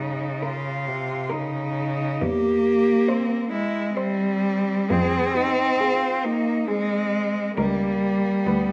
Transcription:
0.00 0.27 G2 soft
0.00 0.89 C#3 medium
0.00 0.45 D#4 medium
0.43 1.33 F4 medium
0.43 1.09 A#4 soft
0.88 1.33 C3 medium
1.29 2.24 C#3 medium
1.29 2.24 D#4 medium
1.29 1.99 A#4 soft
2.21 2.92 E2 medium
2.21 3.52 A#3 medium
2.21 3.11 G4 medium
3.09 3.52 C4 medium
3.09 3.75 C5 medium
3.50 3.98 G#3 medium
3.50 3.95 E4 medium
3.95 4.94 G3 medium
3.95 4.89 C4 medium
3.95 4.69 C5 soft
4.90 5.62 F2 medium
4.90 6.26 C4 medium
4.90 5.38 G#4 medium
5.36 5.81 D#4 medium
5.80 6.26 F4 medium
5.80 6.47 G#4 soft
6.24 6.69 A#3 medium
6.24 6.69 D#4 medium
6.67 7.57 G#3 medium
6.67 7.54 C4 medium
6.67 7.36 G#4 medium
7.55 8.28 C#2 medium
7.55 8.72 G3 medium
7.55 8.46 A#3 medium
7.55 8.24 A#4 medium
8.44 8.72 D2 medium
8.44 8.72 B3 soft
8.44 8.72 B4 soft

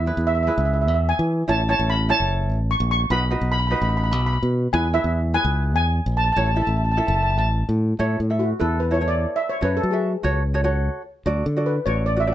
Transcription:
0.00 0.26 E5 medium
0.06 0.31 E4 medium
0.06 0.31 G#4 medium
0.06 0.31 B4 medium
0.17 0.49 E2 loud
0.27 0.34 E5 medium
0.35 0.41 E5 medium
0.43 0.48 E5 medium
0.47 0.96 E4 medium
0.47 0.96 G#4 medium
0.47 0.96 B4 medium
0.47 0.56 E5 medium
0.58 0.88 C#2 medium
0.58 0.64 E5 medium
0.65 0.72 E5 medium
0.73 0.79 E5 medium
0.81 0.86 E5 medium
0.88 1.12 E2 medium
0.88 0.93 E5 medium
0.94 1.01 E5 medium
1.09 1.46 G#5 medium
1.19 1.42 E3 medium
1.48 1.73 A1 loud
1.48 1.60 E4 medium
1.48 1.60 A4 medium
1.48 1.61 C#5 medium
1.48 1.69 A5 medium
1.68 1.93 E4 medium
1.68 1.93 A4 medium
1.68 1.93 C#5 medium
1.68 1.88 A5 medium
1.79 2.11 A1 loud
1.90 2.08 B5 loud
2.09 2.58 E4 medium
2.09 2.58 A4 medium
2.09 2.58 C#5 medium
2.09 2.67 A5 loud
2.20 2.50 F#1 medium
2.50 2.74 A1 medium
2.71 2.90 C#6 medium
2.80 3.04 A#1 loud
2.91 3.00 C#6 loud
3.10 3.34 B1 loud
3.10 3.23 D#4 medium
3.10 3.23 F#4 medium
3.10 3.23 B4 medium
3.10 3.50 B5 medium
3.30 3.55 D#4 medium
3.30 3.55 F#4 medium
3.30 3.56 B4 medium
3.41 3.73 B1 medium
3.52 3.59 B5 loud
3.60 3.66 B5 medium
3.67 4.20 D#4 medium
3.67 3.73 B5 medium
3.71 4.20 F#4 medium
3.71 4.21 B4 medium
3.71 3.81 B5 medium
3.82 4.12 A1 medium
3.82 3.88 B5 medium
3.89 3.96 B5 medium
3.97 4.03 B5 medium
4.04 4.10 B5 medium
4.12 4.36 B1 medium
4.12 4.18 B5 medium
4.20 4.25 B5 medium
4.26 4.32 B5 medium
4.33 4.41 B5 medium
4.43 4.67 B2 medium
4.73 4.98 E2 loud
4.73 4.86 E4 medium
4.73 4.86 G#4 medium
4.73 4.86 B4 medium
4.73 4.82 G#5 loud
4.93 5.18 E4 medium
4.93 5.18 G#4 medium
4.93 5.18 B4 medium
4.93 5.36 E5 medium
5.04 5.36 E2 medium
5.34 5.83 E4 medium
5.34 5.83 G#4 medium
5.34 5.83 B4 medium
5.34 5.75 G#5 loud
5.44 5.75 C#2 medium
5.75 5.99 E2 medium
5.75 6.17 G#5 medium
6.06 6.30 A#1 medium
6.17 6.23 A5 medium
6.24 6.31 A5 medium
6.32 6.48 E4 medium
6.32 6.39 A5 medium
6.36 6.60 A1 loud
6.36 6.49 A4 medium
6.36 6.49 C#5 medium
6.36 6.46 A5 medium
6.47 6.53 A5 medium
6.55 6.81 E4 medium
6.55 6.81 A4 medium
6.55 6.81 E5 medium
6.55 6.60 A5 medium
6.62 6.68 A5 medium
6.67 6.99 A1 medium
6.67 6.76 A5 soft
6.77 6.84 A5 soft
6.85 6.90 A5 soft
6.92 6.98 A5 medium
6.97 7.46 E4 medium
6.97 7.46 A4 medium
6.97 7.47 E5 medium
6.97 7.06 A5 medium
7.07 7.38 F#1 loud
7.07 7.13 A5 medium
7.15 7.21 A5 medium
7.23 7.29 A5 medium
7.31 7.37 A5 medium
7.38 7.62 A1 medium
7.38 7.44 A5 medium
7.69 7.93 A2 medium
7.99 8.15 A2 medium
7.99 8.17 E4 medium
7.99 8.18 A4 medium
7.99 8.18 C#5 medium
8.20 8.52 A2 medium
8.30 8.48 E4 medium
8.30 8.48 A4 medium
8.30 8.48 E5 medium
8.39 8.58 F#4 medium
8.59 9.25 E2 medium
8.59 8.78 E4 medium
8.59 8.69 A4 medium
8.59 8.78 A4 medium
8.59 8.79 B4 medium
8.80 8.94 B4 medium
8.91 8.97 E4 medium
8.91 8.97 A4 medium
8.91 8.97 C#5 medium
8.91 9.08 C#5 medium
9.01 9.38 E4 medium
9.01 9.38 A4 medium
9.01 9.38 C#5 medium
9.08 9.33 D5 medium
9.36 9.49 E5 medium
9.49 9.63 C#5 medium
9.61 9.78 F#2 medium
9.61 9.80 F#4 medium
9.61 9.80 A4 medium
9.61 9.70 B4 medium
9.61 9.81 C#5 medium
9.77 9.90 A4 medium
9.83 10.15 F#3 medium
9.91 10.11 F#4 medium
9.91 10.09 G#4 medium
9.91 10.11 A4 soft
9.91 10.12 E5 medium
10.23 10.88 C#2 medium
10.23 10.42 F#4 medium
10.23 10.42 A4 medium
10.23 10.42 C#5 loud
10.54 10.60 F#4 medium
10.54 10.60 A4 medium
10.54 10.60 C#5 medium
10.64 11.01 F#4 medium
10.64 11.01 A4 medium
10.64 11.01 C#5 medium
11.26 11.42 D2 medium
11.26 11.44 F#4 medium
11.26 11.44 A4 medium
11.26 11.44 D5 loud
11.46 11.78 D3 medium
11.56 11.75 F#4 medium
11.56 11.75 A4 medium
11.56 11.75 D5 medium
11.66 11.87 B4 medium
11.86 12.34 A1 medium
11.86 12.05 F#4 medium
11.86 12.05 A4 medium
11.86 12.05 C#5 medium
11.86 12.05 D5 medium
12.06 12.19 D5 medium
12.16 12.23 F#4 medium
12.16 12.23 A4 medium
12.16 12.23 D5 medium
12.16 12.33 E5 medium
12.27 12.34 F#4 medium
12.27 12.34 A4 medium
12.27 12.34 D5 medium

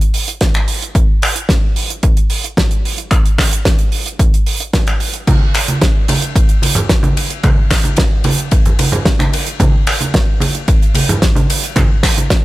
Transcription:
0.01 closed hi-hat medium
0.14 open hi-hat loud
0.28 closed hi-hat medium
0.41 kick loud
0.41 snare loud
0.41 closed hi-hat medium
0.54 finger snap medium
0.54 closed hi-hat medium
0.68 open hi-hat loud
0.82 closed hi-hat medium
0.95 kick loud
0.95 closed hi-hat medium
1.22 finger snap medium
1.22 open hi-hat loud
1.36 closed hi-hat medium
1.49 kick loud
1.49 snare loud
1.49 closed hi-hat medium
1.76 open hi-hat loud
1.90 closed hi-hat medium
2.03 kick loud
2.03 closed hi-hat medium
2.17 closed hi-hat medium
2.30 open hi-hat loud
2.44 closed hi-hat medium
2.57 kick loud
2.57 snare loud
2.57 closed hi-hat medium
2.71 closed hi-hat medium
2.85 open hi-hat loud
2.98 closed hi-hat medium
3.11 finger snap medium
3.11 kick loud
3.11 closed hi-hat medium
3.26 closed hi-hat medium
3.38 finger snap medium
3.38 kick medium
3.38 snare medium
3.38 open hi-hat loud
3.53 closed hi-hat medium
3.65 kick loud
3.65 snare loud
3.65 closed hi-hat medium
3.79 closed hi-hat medium
3.92 open hi-hat medium
4.06 closed hi-hat medium
4.19 kick loud
4.19 closed hi-hat medium
4.34 closed hi-hat medium
4.46 open hi-hat medium
4.60 closed hi-hat medium
4.73 kick loud
4.73 snare loud
4.73 closed hi-hat medium
4.87 finger snap medium
4.87 closed hi-hat medium
5.00 open hi-hat medium
5.14 closed hi-hat medium
5.27 kick loud
5.27 closed hi-hat medium
5.27 crash medium
5.27 ride medium
5.27 high conga loud
5.54 finger snap medium
5.54 open hi-hat loud
5.54 ride medium
5.68 closed hi-hat medium
5.68 high conga medium
5.81 kick loud
5.81 snare loud
5.81 closed hi-hat medium
5.81 ride medium
6.08 open hi-hat loud
6.08 ride loud
6.08 high conga medium
6.22 closed hi-hat medium
6.36 kick loud
6.36 closed hi-hat medium
6.36 ride medium
6.49 closed hi-hat medium
6.62 open hi-hat loud
6.62 ride medium
6.62 high conga medium
6.75 closed hi-hat medium
6.75 low conga medium
6.89 kick loud
6.89 snare loud
6.89 closed hi-hat loud
6.89 ride medium
7.03 closed hi-hat soft
7.03 high conga loud
7.17 open hi-hat medium
7.17 ride medium
7.30 closed hi-hat medium
7.43 finger snap medium
7.43 kick loud
7.43 closed hi-hat medium
7.43 ride medium
7.43 high conga loud
7.43 low conga medium
7.70 finger snap medium
7.70 kick medium
7.70 snare medium
7.70 open hi-hat loud
7.70 ride medium
7.84 closed hi-hat medium
7.84 high conga medium
7.96 kick loud
7.96 snare loud
7.96 closed hi-hat loud
7.96 ride medium
8.24 open hi-hat loud
8.24 ride medium
8.24 high conga loud
8.38 closed hi-hat medium
8.51 kick loud
8.51 closed hi-hat medium
8.51 ride medium
8.66 closed hi-hat medium
8.66 low conga medium
8.79 open hi-hat loud
8.79 ride medium
8.79 high conga medium
8.92 closed hi-hat medium
8.92 low conga medium
9.05 kick loud
9.05 snare loud
9.05 closed hi-hat medium
9.05 ride medium
9.19 finger snap medium
9.19 closed hi-hat medium
9.19 high conga medium
9.33 open hi-hat loud
9.33 ride medium
9.47 closed hi-hat medium
9.60 kick loud
9.60 closed hi-hat medium
9.60 ride medium
9.60 high conga loud
9.87 finger snap medium
9.87 open hi-hat loud
9.87 ride medium
10.01 closed hi-hat medium
10.01 high conga medium
10.14 kick loud
10.14 snare loud
10.14 closed hi-hat medium
10.14 ride medium
10.40 open hi-hat loud
10.40 ride medium
10.40 high conga loud
10.55 closed hi-hat medium
10.68 kick loud
10.68 closed hi-hat medium
10.68 ride medium
10.82 closed hi-hat soft
10.94 open hi-hat loud
10.94 ride medium
10.94 high conga medium
11.09 closed hi-hat medium
11.09 low conga loud
11.22 kick loud
11.22 snare loud
11.22 closed hi-hat medium
11.22 ride medium
11.35 closed hi-hat medium
11.35 high conga medium
11.50 open hi-hat loud
11.50 ride medium
11.63 closed hi-hat medium
11.76 finger snap medium
11.76 kick loud
11.76 closed hi-hat medium
11.76 ride medium
11.76 high conga medium
11.76 low conga medium
12.03 finger snap medium
12.03 kick medium
12.03 snare medium
12.03 open hi-hat loud
12.03 ride medium
12.17 closed hi-hat medium
12.17 high conga medium
12.30 kick loud
12.30 snare loud
12.30 closed hi-hat medium
12.30 ride medium

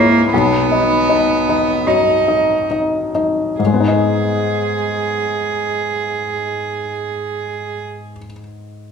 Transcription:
0.00 0.35 G#2 soft
0.00 0.31 A#3 medium
0.00 0.34 E4 soft
0.00 0.34 G#4 soft
0.00 0.34 C#5 soft
0.32 1.83 B1 medium
0.32 1.88 B3 medium
0.71 1.05 D#4 soft
0.71 1.06 D#5 soft
1.09 1.44 D#4 soft
1.09 1.44 D#5 soft
1.49 1.84 D#4 soft
1.49 1.84 D#5 soft
1.86 2.53 F#2 soft
1.86 2.70 D#4 medium
2.28 2.66 D#4 soft
2.28 2.66 D#5 soft
2.71 3.11 D#4 soft
2.71 3.11 D#5 soft
3.15 3.55 D#4 soft
3.15 3.55 D#5 soft
3.59 8.10 G#2 soft
3.59 7.79 G#4 soft
3.66 8.17 G#3 soft
3.74 8.24 B3 soft
3.80 8.31 D#4 soft
3.88 8.38 D#5 soft

